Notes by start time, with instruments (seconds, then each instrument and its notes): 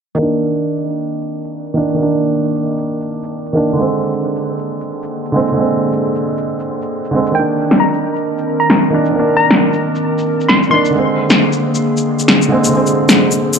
0.15 felt piano D#3 A#3, ambient pad D#3 C4 A#4
0.23 felt piano D4
0.55 shaker
0.77 shaker
0.99 shaker
1.21 shaker
1.44 shaker
1.66 shaker
1.74 felt piano D#3 A#3 D4
1.89 shaker
1.94 felt piano D#3
1.98 felt piano A#3 D4
2.34 shaker
2.56 shaker
2.78 shaker
3.01 shaker
3.23 shaker
3.46 shaker
3.53 felt piano D#3 A#3 D4
3.68 shaker
3.73 felt piano D3 G#3, ambient pad D3 A#3 G#4
3.81 felt piano C4
4.13 shaker
4.36 shaker
4.58 shaker
4.81 shaker
5.03 shaker
5.25 shaker
5.32 felt piano D3 G#3 C4
5.48 shaker
5.52 felt piano D3
5.56 felt piano G#3
5.60 felt piano C4
5.93 shaker
6.15 shaker
6.38 shaker
6.60 shaker
6.82 shaker
7.05 shaker
7.11 felt piano D3 G#3
7.15 felt piano C4
7.26 shaker
7.32 felt piano D#3 A#3, synth pluck G5
7.36 ambient pad D#3 C4 A#4, felt piano D4
7.71 snare, shaker
7.80 synth pluck A#5
7.94 shaker
8.16 shaker
8.38 shaker
8.60 synth pluck A#5, shaker
8.70 snare
8.83 shaker
8.90 felt piano D#3 A#3
8.94 felt piano D4
9.05 shaker
9.11 felt piano D#3
9.15 felt piano A#3
9.19 felt piano D4
9.37 synth pluck A#5
9.51 snare, shaker
9.73 shaker
9.96 shaker
10.18 shaker
10.41 shaker
10.49 synth pluck C6, snare
10.63 shaker
10.70 felt piano D#3 A#3 D4, synth pluck C6
10.85 shaker
10.90 felt piano D3, ambient pad D3 A#3 G#4
10.94 felt piano G#3 C4
11.30 snare, shaker
11.53 shaker
11.75 shaker
11.97 shaker
12.19 shaker
12.28 snare
12.42 shaker
12.48 felt piano D3 G#3 C4
12.64 shaker
12.68 felt piano D3
12.73 felt piano G#3 C4
12.86 shaker
13.09 snare, shaker
13.31 shaker
13.53 shaker